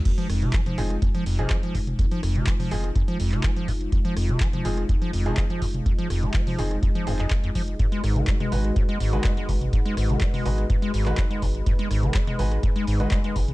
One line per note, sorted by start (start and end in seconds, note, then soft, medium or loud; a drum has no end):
0.05 0.12 F2 medium
0.05 13.54 G#3 medium
0.05 13.54 D#4 medium
0.05 7.76 F4 medium
0.05 kick loud
0.05 closed hi-hat medium
0.05 crash loud
0.18 0.27 F3 loud
0.18 closed hi-hat soft
0.29 0.49 F1 loud
0.29 0.44 F2 medium
0.29 cross-stick medium
0.29 open hi-hat loud
0.42 0.55 C3 medium
0.42 closed hi-hat soft
0.42 mid tom medium
0.53 0.61 F3 loud
0.53 kick loud
0.53 clap loud
0.53 closed hi-hat medium
0.66 0.79 F3 medium
0.66 closed hi-hat soft
0.66 mid tom medium
0.78 0.97 F1 loud
0.78 0.82 D#2 loud
0.78 0.94 F3 medium
0.78 0.94 C4 medium
0.78 0.94 D#4 medium
0.78 0.94 G#4 medium
0.78 open hi-hat loud
0.90 cross-stick soft
0.90 closed hi-hat soft
1.02 1.09 F2 medium
1.02 kick loud
1.02 closed hi-hat medium
1.15 1.24 F3 loud
1.15 closed hi-hat soft
1.26 1.46 F1 medium
1.26 1.40 F2 medium
1.26 open hi-hat loud
1.39 1.52 C3 medium
1.39 1.54 F3 medium
1.39 1.54 C4 medium
1.39 1.54 D#4 medium
1.39 1.54 G#4 loud
1.39 closed hi-hat soft
1.50 1.57 F3 loud
1.50 kick loud
1.50 cross-stick medium
1.50 clap loud
1.50 closed hi-hat medium
1.63 1.76 F3 medium
1.63 closed hi-hat soft
1.75 1.94 F1 medium
1.75 1.79 D#2 loud
1.75 kick medium
1.75 open hi-hat loud
1.87 closed hi-hat soft
1.87 mid tom medium
1.99 2.06 F2 medium
1.99 kick loud
1.99 closed hi-hat medium
2.11 2.21 F3 loud
2.11 closed hi-hat soft
2.23 2.43 F1 loud
2.23 2.37 F2 medium
2.23 cross-stick medium
2.23 open hi-hat loud
2.36 2.49 C3 medium
2.36 closed hi-hat soft
2.36 mid tom medium
2.47 2.54 F3 loud
2.47 kick loud
2.47 clap loud
2.47 closed hi-hat medium
2.60 2.73 F3 medium
2.60 open hi-hat medium
2.60 mid tom medium
2.71 2.91 F1 loud
2.71 2.76 D#2 loud
2.71 2.87 F3 medium
2.71 2.87 C4 medium
2.71 2.87 D#4 medium
2.71 2.87 G#4 medium
2.71 open hi-hat loud
2.84 cross-stick soft
2.84 closed hi-hat soft
2.96 3.03 F2 medium
2.96 kick loud
2.96 closed hi-hat medium
3.08 3.18 F3 loud
3.08 closed hi-hat soft
3.20 3.39 F1 medium
3.20 3.34 F2 medium
3.20 open hi-hat loud
3.32 3.46 C3 medium
3.32 clap soft
3.32 closed hi-hat soft
3.43 3.51 F3 loud
3.43 kick loud
3.43 cross-stick medium
3.43 clap loud
3.43 closed hi-hat medium
3.56 3.70 F3 medium
3.56 closed hi-hat soft
3.68 3.88 F1 medium
3.68 3.72 D#2 loud
3.68 kick medium
3.68 open hi-hat loud
3.81 closed hi-hat soft
3.92 3.99 F2 medium
3.92 kick loud
3.92 closed hi-hat medium
4.05 4.15 F3 loud
4.05 closed hi-hat soft
4.17 4.36 F1 loud
4.17 4.31 F2 medium
4.17 cross-stick medium
4.17 open hi-hat loud
4.29 4.42 C3 medium
4.29 closed hi-hat soft
4.29 mid tom loud
4.40 4.48 F3 loud
4.40 kick loud
4.40 clap loud
4.40 closed hi-hat medium
4.53 4.67 F3 medium
4.53 closed hi-hat soft
4.53 mid tom loud
4.65 4.84 F1 loud
4.65 4.69 D#2 loud
4.65 4.81 F3 medium
4.65 4.81 C4 medium
4.65 4.81 D#4 medium
4.65 4.81 G#4 medium
4.65 open hi-hat loud
4.77 cross-stick soft
4.77 closed hi-hat soft
4.89 4.96 F2 medium
4.89 kick loud
4.89 closed hi-hat medium
5.02 5.11 F3 loud
5.02 closed hi-hat soft
5.13 5.33 F1 loud
5.13 5.27 F2 medium
5.13 open hi-hat loud
5.26 5.39 C3 medium
5.26 5.41 F3 medium
5.26 5.41 C4 medium
5.26 5.41 D#4 medium
5.26 5.41 G#4 loud
5.26 closed hi-hat soft
5.37 5.44 F3 loud
5.37 kick loud
5.37 cross-stick medium
5.37 clap loud
5.37 closed hi-hat medium
5.50 5.63 F3 medium
5.50 closed hi-hat soft
5.62 5.81 F1 medium
5.62 5.66 D#2 loud
5.62 kick medium
5.62 open hi-hat loud
5.74 closed hi-hat soft
5.74 mid tom medium
5.86 5.93 F2 medium
5.86 kick loud
5.86 closed hi-hat medium
5.98 6.08 F3 loud
5.98 closed hi-hat soft
6.10 6.30 F1 loud
6.10 6.24 F2 medium
6.10 cross-stick medium
6.10 open hi-hat loud
6.23 6.36 C3 medium
6.23 closed hi-hat soft
6.23 mid tom loud
6.34 6.41 F3 loud
6.34 kick loud
6.34 clap loud
6.34 closed hi-hat medium
6.47 6.60 F3 medium
6.47 open hi-hat medium
6.47 mid tom loud
6.59 6.78 F1 loud
6.59 6.63 D#2 loud
6.59 6.75 F3 medium
6.59 6.75 C4 medium
6.59 6.75 D#4 medium
6.59 6.75 G#4 medium
6.59 open hi-hat loud
6.71 cross-stick soft
6.71 closed hi-hat soft
6.83 6.90 F2 medium
6.83 kick loud
6.83 closed hi-hat medium
6.95 7.09 F3 loud
6.95 closed hi-hat soft
7.07 7.26 F1 loud
7.07 7.14 F2 medium
7.07 7.17 F3 medium
7.07 7.17 C4 medium
7.07 7.17 D#4 medium
7.07 7.17 G#4 medium
7.07 open hi-hat loud
7.19 7.26 F2 medium
7.19 7.29 F3 medium
7.19 7.29 C4 medium
7.19 7.29 D#4 medium
7.19 7.29 G#4 medium
7.19 clap soft
7.19 closed hi-hat soft
7.30 kick loud
7.30 cross-stick medium
7.30 clap loud
7.30 closed hi-hat medium
7.44 7.50 F2 loud
7.44 closed hi-hat soft
7.55 7.75 F1 loud
7.55 7.62 F3 loud
7.55 kick medium
7.55 open hi-hat loud
7.68 closed hi-hat soft
7.79 7.86 G#2 medium
7.79 11.63 F#4 medium
7.79 13.54 B4 medium
7.79 kick loud
7.79 closed hi-hat medium
7.92 8.02 G#3 loud
7.92 closed hi-hat soft
8.04 8.23 G#1 loud
8.04 8.18 G#2 medium
8.04 cross-stick medium
8.04 open hi-hat loud
8.16 8.29 D#3 medium
8.16 closed hi-hat soft
8.16 mid tom loud
8.27 8.35 G#3 loud
8.27 kick loud
8.27 clap loud
8.27 closed hi-hat medium
8.40 8.54 G#3 medium
8.40 closed hi-hat soft
8.40 mid tom loud
8.52 8.72 G#1 loud
8.52 8.56 F#2 loud
8.52 8.68 G#3 medium
8.52 8.68 D#4 medium
8.52 8.68 F#4 medium
8.52 8.68 B4 medium
8.52 open hi-hat loud
8.65 cross-stick soft
8.65 closed hi-hat soft
8.76 8.83 G#2 medium
8.76 kick loud
8.76 closed hi-hat medium
8.89 8.98 G#3 loud
8.89 closed hi-hat soft
9.00 9.20 G#1 medium
9.00 9.15 G#2 medium
9.00 open hi-hat loud
9.13 9.26 D#3 medium
9.13 9.28 G#3 medium
9.13 9.28 D#4 medium
9.13 9.28 F#4 medium
9.13 9.28 B4 loud
9.13 closed hi-hat soft
9.24 9.32 G#3 loud
9.24 kick loud
9.24 cross-stick medium
9.24 clap loud
9.24 closed hi-hat medium
9.37 9.50 G#3 medium
9.37 closed hi-hat soft
9.49 9.68 G#1 medium
9.49 9.53 F#2 loud
9.49 kick medium
9.49 open hi-hat loud
9.61 closed hi-hat soft
9.61 mid tom medium
9.73 9.80 G#2 medium
9.73 kick loud
9.73 closed hi-hat medium
9.86 9.95 G#3 loud
9.86 closed hi-hat soft
9.97 10.17 G#1 loud
9.97 10.11 G#2 medium
9.97 cross-stick medium
9.97 open hi-hat loud
10.10 10.23 D#3 medium
10.10 closed hi-hat soft
10.10 mid tom loud
10.21 10.28 G#3 loud
10.21 kick loud
10.21 clap loud
10.21 closed hi-hat medium
10.34 10.47 G#3 medium
10.34 open hi-hat medium
10.34 mid tom medium
10.45 10.65 G#1 loud
10.45 10.50 F#2 loud
10.45 10.62 G#3 medium
10.45 10.62 D#4 medium
10.45 10.62 F#4 medium
10.45 10.62 B4 medium
10.45 open hi-hat loud
10.58 cross-stick soft
10.58 closed hi-hat soft
10.70 10.77 G#2 medium
10.70 kick loud
10.70 closed hi-hat medium
10.82 10.92 G#3 loud
10.82 closed hi-hat soft
10.94 11.13 G#1 loud
10.94 11.08 G#2 medium
10.94 open hi-hat loud
11.06 11.20 D#3 medium
11.06 11.22 G#3 medium
11.06 11.22 D#4 medium
11.06 11.22 F#4 medium
11.06 11.22 B4 loud
11.06 clap soft
11.06 closed hi-hat soft
11.17 11.25 G#3 loud
11.17 kick loud
11.17 cross-stick medium
11.17 clap loud
11.17 closed hi-hat medium
11.31 11.44 G#3 medium
11.31 closed hi-hat soft
11.42 11.62 G#1 medium
11.42 11.47 F#2 loud
11.42 kick medium
11.42 open hi-hat loud
11.55 closed hi-hat soft
11.66 11.73 G#2 medium
11.66 13.54 G#4 medium
11.66 kick loud
11.66 closed hi-hat medium
11.79 11.89 G#3 loud
11.79 closed hi-hat soft
11.91 12.10 G#1 loud
11.91 12.05 G#2 medium
11.91 cross-stick medium
11.91 open hi-hat loud
12.03 12.16 D#3 medium
12.03 closed hi-hat soft
12.03 mid tom medium
12.14 12.22 G#3 loud
12.14 kick loud
12.14 clap loud
12.14 closed hi-hat medium
12.27 12.41 G#3 medium
12.27 closed hi-hat soft
12.27 mid tom medium
12.39 12.59 G#1 loud
12.39 12.43 F#2 loud
12.39 12.55 G#3 medium
12.39 12.55 D#4 medium
12.39 12.55 F#4 medium
12.39 12.55 B4 medium
12.39 open hi-hat loud
12.52 cross-stick soft
12.52 closed hi-hat soft
12.63 12.70 G#2 medium
12.63 kick loud
12.63 closed hi-hat medium
12.76 12.86 G#3 loud
12.76 closed hi-hat soft
12.87 13.07 G#1 medium
12.87 13.02 G#2 medium
12.87 open hi-hat loud
13.00 13.13 D#3 medium
13.00 13.15 G#3 medium
13.00 13.15 D#4 medium
13.00 13.15 F#4 medium
13.00 13.15 B4 loud
13.00 closed hi-hat soft
13.11 13.19 G#3 loud
13.11 kick loud
13.11 cross-stick medium
13.11 clap loud
13.11 closed hi-hat medium
13.24 13.37 G#3 medium
13.24 closed hi-hat soft
13.36 13.54 G#1 medium
13.36 13.40 F#2 loud
13.36 kick medium
13.36 open hi-hat loud
13.48 closed hi-hat soft
13.48 mid tom medium